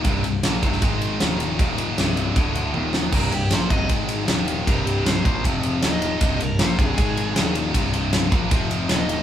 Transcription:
<<
  \new Staff \with { instrumentName = "Lead electric guitar" } { \time 4/4 \key c \minor \tempo 4 = 156 r1 | r1 | bes'8 g'8 c''8 ees''8 r2 | bes'8 g'8 c''8 c''8 r4 ees''4~ |
ees''8 bes'8 c''8 aes'2 r8 | r2. ees''4 | }
  \new Staff \with { instrumentName = "Distorted electric guitar" } { \clef bass \time 4/4 \key c \minor <c, g, c>8 <c, g,>8 <bes, f bes>8 <c, g, c>8 <aes, ees aes>4 <ees, bes, ees>4 | <ees, bes, ees>4 <c, g, c>4 <d, a, d>4 <ees, bes, ees>4 | <c, g, c>8 <c, g,>8 <bes, f bes>8 <c, g, c>8 <aes, ees aes>4 <ees, bes, ees>4 | <c, g, c>4. <bes, f bes>8 <f, c f>4 <ees, bes, ees>4 |
<c, g, c>8 <c, g,>8 <bes, f bes>8 <c, g, c>8 <aes, ees aes>4 <ees, bes, ees>4 | <c, g, c>4. <bes, f bes>8 <f, c f>4 <ees, bes, ees>4 | }
  \new Staff \with { instrumentName = "Distorted electric guitar" } { \clef bass \time 4/4 \key c \minor <c, g, c>8 <c, g,>8 <bes, f bes>8 <c, g, c>8 <aes, ees aes>4 <ees, bes, ees>4 | <ees, bes, ees>4 <c, g, c>4 <d, a, d>4 <ees, bes, ees>4 | <c, g, c>8 <c, g,>8 <bes, f bes>8 <c, g, c>8 <aes, ees aes>4 <ees, bes, ees>4 | <c, g, c>4. <bes, f bes>8 <f, c f>4 <ees, bes, ees>4 |
<c, g, c>8 <c, g,>8 <bes, f bes>8 <c, g, c>8 <aes, ees aes>4 <ees, bes, ees>4 | <c, g, c>4. <bes, f bes>8 <f, c f>4 <ees, bes, ees>4 | }
  \new Staff \with { instrumentName = "Picked electric bass" } { \clef bass \time 4/4 \key c \minor c,,8 c,,8 bes,,8 c,,8 aes,,4 ees,,4 | ees,,4 c,,4 d,,4 ees,,4 | c,,8 c,,8 bes,,8 c,,8 aes,,4 ees,,4 | c,,4. bes,,8 f,,4 ees,,4 |
c,,8 c,,8 bes,,8 c,,8 aes,,4 ees,,4 | c,,4. bes,,8 f,,4 ees,,4 | }
  \new DrumStaff \with { instrumentName = "Drums" } \drummode { \time 4/4 <bd cymr>8 cymr8 <cymr sn>8 <bd cymr>16 sn16 <bd cymr>8 cymr8 <cymr sn>8 cymr8 | <bd cymr>8 cymr8 <cymr sn>8 cymr8 <bd cymr>8 cymr8 tommh8 sn8 | <cymc bd>8 cymr8 <cymr sn>8 <bd cymr>8 <bd cymr>8 cymr8 <cymr sn>8 cymr8 | <bd cymr>8 cymr8 <cymr sn>8 <bd cymr>8 <bd cymr>8 cymr8 <cymr sn>8 cymr8 |
<bd cymr>8 cymr8 <cymr sn>8 <bd cymr>8 <bd cymr>8 cymr8 <cymr sn>8 cymr8 | <bd cymr>8 cymr8 <cymr sn>8 <bd cymr>8 <bd cymr>8 cymr8 <cymr sn>8 cymr8 | }
>>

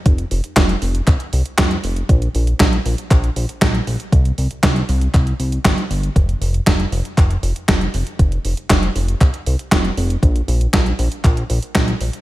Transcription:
<<
  \new Staff \with { instrumentName = "Analog synth bass" } { \clef bass \time 4/4 \key c \phrygian \tempo 4 = 118 f,,8 f,,8 f,,8 f,,8 c,8 c,8 f,,8 f,,8 | bes,,8 bes,,8 bes,,8 bes,,8 bes,,8 bes,,8 bes,,8 bes,,8 | c,8 c,8 c,8 c,8 c,8 c,8 g,,8 g,,8 | f,,8 f,,8 f,,8 f,,8 f,,8 f,,8 f,,8 f,,8 |
f,,8 f,,8 f,,8 f,,8 c,8 c,8 f,,8 f,,8 | bes,,8 bes,,8 bes,,8 bes,,8 bes,,8 bes,,8 bes,,8 bes,,8 | }
  \new DrumStaff \with { instrumentName = "Drums" } \drummode { \time 4/4 <hh bd>16 hh16 hho16 hh16 <hc hh bd sn>16 hh16 hho16 hh16 <hc hh bd>16 hh16 hho16 hh16 <hc hh bd sn>16 hh16 hho16 hh16 | <hh bd>16 hh16 hho16 hh16 <hc hh bd sn>16 hh16 hho16 hh16 <hc hh bd>16 hh16 hho16 hh16 <hc hh bd sn>16 hh16 hho16 hh16 | <hh bd>16 hh16 hho16 hh16 <hc hh bd sn>16 hh16 hho16 hh16 <hc hh bd>16 hh16 hho16 hh16 <hc hh bd sn>16 hh16 hho16 hh16 | <hh bd>16 hh16 hho16 hh16 <hc hh bd sn>16 hh16 hho16 hh16 <hc hh bd>16 hh16 hho16 hh16 <hc hh bd sn>16 hh16 hho16 hh16 |
<hh bd>16 hh16 hho16 hh16 <hc hh bd sn>16 hh16 hho16 hh16 <hc hh bd>16 hh16 hho16 hh16 <hc hh bd sn>16 hh16 hho16 hh16 | <hh bd>16 hh16 hho16 hh16 <hc hh bd sn>16 hh16 hho16 hh16 <hc hh bd>16 hh16 hho16 hh16 <hc hh bd sn>16 hh16 hho16 hh16 | }
>>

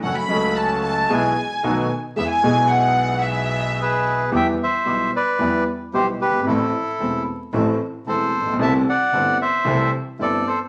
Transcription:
<<
  \new Staff \with { instrumentName = "Violin section" } { \time 4/4 \key e \major \tempo 4 = 112 fis''16 b''8. a''8 a''8 gis''4. r8 | e''16 gis''8. fis''4 e''4. r8 | \key e \minor r1 | r1 |
r1 | }
  \new Staff \with { instrumentName = "Bandoneon" } { \time 4/4 \key e \major r1 | r2. <gis' b'>4 | \key e \minor <e'' g''>8 <c'' e''>4 <b' d''>4 r8 <g' c''>8 <g' b'>8 | <e' a'>4. r4. <a' c''>4 |
<e'' a''>8 <d'' fis''>4 <c'' e''>4 r8 <a' d''>8 <a' c''>8 | }
  \new Staff \with { instrumentName = "Bandoneon" } { \time 4/4 \key e \major <cis' fis' a'>8 <cis' fis' a'>4. <b e' gis'>8 r8 <b dis' a'>8 r8 | <b e' gis'>8 <b e' gis'>2.~ <b e' gis'>8 | \key e \minor <b e' g'>8 r8 <b e' g'>8 r8 <b e' g'>8 r8 <b e' g'>8 r8 | <c' e' a'>8 r8 <c' e' a'>8 r8 <c' e' a'>8 r8 <c' e' a'>8 r8 |
<c' e' a'>8 r8 <c' e' a'>8 r8 <c' e' a'>8 r8 <c' e' a'>8 r8 | }
  \new Staff \with { instrumentName = "Grand piano" } { \clef bass \time 4/4 \key e \major <fis, fis a cis' a'>8 <cis, cis fis a cis' a'>4. <b,, b, e gis b gis'>8 r8 <b,, b, dis a b fis'>8 r8 | <e, e gis b gis'>8 <b,, b, e gis b gis'>2.~ <b,, b, e gis b gis'>8 | \key e \minor <e, e g b g'>8 r8 <b,, b, e g b g'>8 r8 <e, e g b g'>8 r8 <b,, b, e g b g'>8 r32 fis,,32 g,,32 gis,,32 | <a,, a, e a c' a'>8 r8 <e,, e, e a c' a'>8 r8 <a,, a, e a c' a'>8 r8 <e,, e, e a c' a'>8 r32 a,,32 ais,,32 b,,32 |
<c, c e a c' g'>8 r8 <g,, g, e a c' g'>8 r8 <c, c e a c' g'>8 r8 <g,, g, e a c' g'>8 r8 | }
  \new Staff \with { instrumentName = "Double bass" } { \clef bass \time 4/4 \key e \major fis,,8 cis,4. b,,8 r8 b,,8 r8 | e,8 b,,2.~ b,,8 | \key e \minor e,8 r8 b,,8 r8 e,8 r8 b,,8 g,,8 | a,,8 r8 e,,8 r8 a,,8 r8 e,,8 ais,,8 |
c,8 r8 g,,8 r8 c,8 r8 g,,8 r8 | }
>>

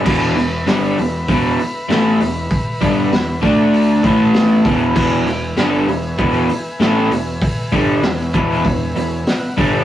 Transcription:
<<
  \new Staff \with { instrumentName = "Transistor combo organ" } { \time 4/4 \key e \mixolydian \tempo 4 = 98 << { r1 | r1 | r1 | r2 r8 b''16 gis''16 fis''8 r8 | } \\ { <b' e'' b''>1~ | <b' e'' b''>4. <a' d'' a''>4 <a' e'' a''>4 <b' e'' gis''>8~ | <b' e'' gis''>1~ | <b' e'' gis''>2.~ <b' e'' gis''>8 <b' e'' gis''>8 | } >> }
  \new Staff \with { instrumentName = "Overdriven electric guitar" } { \clef bass \time 4/4 \key e \mixolydian <e, b, e>8 <e, b,>8 <g, d g>8 <e, b,>8 <e, b, e>8 r8 <a, e a>8 <e, b,>8 | r8 <g, d g>8 <e, b,>8 <d a d'>4 <a, e a>4 <e, b, e>8 | <e, b, e>8 <e, b,>8 <g, d g>8 <e, b,>8 <e, b, e>8 r8 <a, e a>8 <e, b,>8 | r8 <g, d g>8 <e, b,>8 <e, b, e>8 <e, b,>8 <e, b,>8 r8 <g, d g>8 | }
  \new Staff \with { instrumentName = "Picked electric bass" } { \clef bass \time 4/4 \key e \mixolydian e,,8 e,,8 g,,8 e,,8 e,,8 r8 a,,8 e,,8 | r8 g,,8 e,,8 d,4 a,,4 e,,8 | e,,8 e,,8 g,,8 e,,8 e,,8 r8 a,,8 e,,8 | r8 g,,8 e,,8 e,,8 e,,8 e,,8 r8 g,,8 | }
  \new DrumStaff \with { instrumentName = "Drums" } \drummode { \time 4/4 <cymc bd>8 hho8 <hho sn>8 hho8 <hho bd>8 hho8 <hho sn>8 hho8 | <hho bd>8 <hho bd>8 <hho sn>8 <hho bd>8 hho8 <hho bd>8 <hho sn>8 <hho bd>8 | <cymc bd>8 hho8 <hho sn>8 hho8 <hho bd>8 hho8 <hho sn>8 hho8 | <hho bd>8 <hho bd>8 <hho sn>8 <hho bd>8 <hho bd>8 hho8 <hho sn>8 <hho bd>8 | }
>>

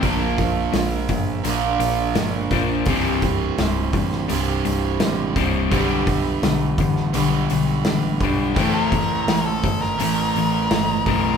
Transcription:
<<
  \new Staff \with { instrumentName = "Lead electric guitar" } { \time 4/4 \key c \major \tempo 4 = 84 r1 | r1 | r1 | g'16 bes'4 a'8 bes'4.~ bes'16 bes'8 | }
  \new Staff \with { instrumentName = "Steel-string acoustic guitar" } { \time 4/4 \key c \major <bes, f bes d' f' bes'>4 <bes d' f' bes'>4 <bes, f bes d' f' bes'>4 <bes d' f' bes'>8 <bes d' f' bes'>8 | <c e g c' e' c''>4 <g c' e' c''>4 <c e g c' e' c''>4 <g c' e' c''>8 <g c' e' c''>8 | <b d' g' b'>4 <b d' g' b'>4 <b d' g' b'>4 <b d' g' b'>8 <d' g' b'>8 | <a, e c' e'>4 <e c' e' a'>4 <a, e c' e'>4 <e c' e'>8 <c' e'>8 | }
  \new Staff \with { instrumentName = "Overdriven electric guitar" } { \clef bass \time 4/4 \key c \major <bes, f bes>2 <bes, f bes>2 | <c, g, c>2 <c, g, c>2 | <g, d g>2 <g, d g>2 | <a, e a>2 <a, e a>2 | }
  \new Staff \with { instrumentName = "Overdriven electric guitar" } { \clef bass \time 4/4 \key c \major <bes, f bes>8 <bes, f>8 <bes, f>8 <bes, f>8 <bes, f>8 <bes, f>8 <bes, f>8 <bes, f bes>8 | <c, g, c>8 <c, g,>8 <c, g,>8 <c, g,>8 <c, g,>8 <c, g,>8 <c, g,>8 <c, g, c>8 | <g, d g>8 <g, d>8 <g, d>8 <g, d>8 <g, d>8 <g, d>8 <g, d>8 <g, d g>8 | <a, e a>8 <a, e>8 <a, e>8 <a, e>8 <a, e>8 <a, e>8 <a, e>8 <a, e a>8 | }
  \new Staff \with { instrumentName = "Picked electric bass" } { \clef bass \time 4/4 \key c \major bes,,4 bes,,8 g,,8 bes,,8 bes,,8 g,,8 bes,,8 | c,,4 c,,8 a,,8 c,,8 c,,8 a,,8 c,,8 | b,,4 b,,8 a,,8 b,,8 b,,8 a,,8 b,,8 | a,,4 a,,8 g,,8 a,,8 a,,8 g,,8 b,,8 | }
  \new DrumStaff \with { instrumentName = "Drums" } \drummode { \time 4/4 <hho bd>8 <hho bd sn>8 <hho sn>8 <hho bd>8 hho8 hho8 <hho sn>8 <hho bd>8 | <hho bd>8 <hho bd>8 <hho sn>8 <hho bd>16 sn16 hho8 hho8 <hho sn>8 <hho bd>8 | <hho bd>8 <hho bd sn>8 <hho sn>8 <hho bd>16 sn16 hho8 hho8 <hho sn>8 <hho bd>8 | <hho bd>8 <hho bd>8 <hho sn>8 <hho bd>16 sn16 hho8 hho8 <hho sn>8 <hho bd>8 | }
>>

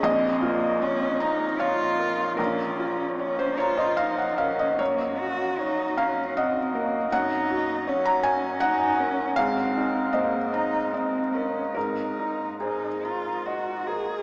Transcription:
<<
  \new Staff \with { instrumentName = "Felt piano" } { \time 3/4 \key aes \mixolydian \tempo 4 = 76 << { ees''2 des''4 | bes'4~ bes'16 c''16 des''16 ees''16 f''16 ges''16 f''16 ees''16 | des''4. f''8 ees''4 | ges''4~ ges''16 bes''16 aes''8 ges''4 |
f''4 ees''2 | bes'4 aes'4 r4 | } \\ { bes,,8 f'8 des''8 bes''8 f''8 bes'8 | bes,,8 f'8 des''8 bes''4 bes'8 | ges,8 ges'8 des''8 bes''8 ges''8 bes'8 | ges,8 ges'8 des''8 bes''4 bes'8 |
aes,8 ees'8 c''8 bes''8 ees''8 bes'8 | aes,8 ees'8 c''8 bes''8 ees''8 bes'8 | } >> }
  \new Staff \with { instrumentName = "Cello" } { \time 3/4 \key aes \mixolydian c'8 bes8 des'8 ees'8 f'4 | des'4 des'8 f'8 ees'8 des'8 | bes8 ges'8 ees'8 des'8 c'8 bes8 | ees'4 des'4 ees'8 des'8 |
c'4 bes8 ees'8 c'8 des'8 | ees'4 ees'8 f'8 ges'8 aes'8 | }
>>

